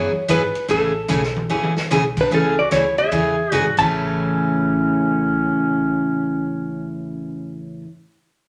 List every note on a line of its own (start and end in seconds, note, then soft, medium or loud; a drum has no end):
0.00 0.13 F#1 medium
0.00 0.11 E3 medium
0.00 0.11 F#3 medium
0.00 0.11 B3 medium
0.00 0.11 E4 medium
0.00 0.11 G#4 medium
0.00 0.32 C#5 loud
0.14 muted upright bass stroke soft
0.28 0.53 G#1 medium
0.28 0.41 E3 medium
0.28 0.41 F#3 medium
0.28 0.41 B3 medium
0.28 0.41 E4 medium
0.28 0.41 G#4 medium
0.28 0.70 B4 medium
0.28 kick soft
0.28 hi-hat pedal medium
0.28 ride medium
0.55 muted upright bass stroke soft
0.55 ride soft
0.68 1.09 A1 medium
0.68 0.91 C#3 medium
0.68 0.91 E3 medium
0.68 0.91 A3 medium
0.68 0.91 C#4 medium
0.68 0.92 G#4 medium
0.68 1.87 A4 medium
0.68 kick soft
0.68 ride medium
1.08 1.49 B1 medium
1.08 1.21 C#3 medium
1.08 1.21 E3 medium
1.08 1.21 A3 medium
1.08 1.22 C#4 medium
1.08 1.22 G#4 medium
1.08 hi-hat pedal medium
1.23 snare medium
1.36 high tom medium
1.49 1.75 C#2 medium
1.49 1.72 C#3 medium
1.49 1.73 E3 medium
1.49 1.72 A3 medium
1.49 1.72 C#4 medium
1.49 1.73 G#4 medium
1.49 high tom medium
1.63 high tom medium
1.76 muted upright bass stroke soft
1.76 snare medium
1.90 2.30 B1 medium
1.90 2.02 C#3 medium
1.90 2.03 E3 medium
1.90 2.03 A3 medium
1.90 2.03 C#4 medium
1.90 2.03 G#4 medium
1.90 snare medium
1.90 hi-hat pedal medium
2.17 2.32 D4 medium
2.17 2.33 B4 medium
2.17 kick medium
2.17 crash medium
2.31 2.70 C#2 medium
2.31 2.53 C#3 medium
2.31 2.54 E3 medium
2.31 2.54 A3 medium
2.31 2.54 C#4 medium
2.31 2.57 C#4 medium
2.31 2.54 G#4 medium
2.31 2.60 A4 medium
2.31 kick soft
2.59 2.72 F#4 medium
2.59 2.71 D5 medium
2.71 3.11 D2 medium
2.71 2.83 C#3 medium
2.71 2.83 E3 medium
2.71 2.83 A3 medium
2.71 2.83 C#4 medium
2.71 2.97 E4 medium
2.71 2.84 G#4 medium
2.71 2.96 C#5 loud
2.71 kick soft
2.71 snare medium
2.71 hi-hat pedal medium
2.71 ride medium
2.98 3.54 G#4 medium
2.98 3.54 E5 loud
2.98 ride soft
3.11 3.51 E2 medium
3.11 3.34 C#3 medium
3.11 3.34 E3 medium
3.11 3.34 A3 medium
3.11 3.34 C#4 medium
3.11 3.34 G#4 medium
3.11 kick soft
3.11 ride medium
3.52 3.78 G#2 medium
3.52 3.64 C#3 medium
3.52 3.64 E3 medium
3.52 3.64 A3 medium
3.52 3.64 C#4 medium
3.52 3.75 F#4 medium
3.52 3.64 G#4 medium
3.52 3.75 D5 loud
3.52 hi-hat pedal medium
3.52 mid tom soft
3.66 mid tom medium
3.77 7.81 A1 medium
3.77 7.84 A2 medium
3.77 7.84 C#3 medium
3.77 7.85 E3 medium
3.77 7.86 A3 medium
3.77 7.81 C#4 medium
3.77 7.86 C#4 medium
3.77 7.81 A5 medium
3.77 kick medium
3.77 crash medium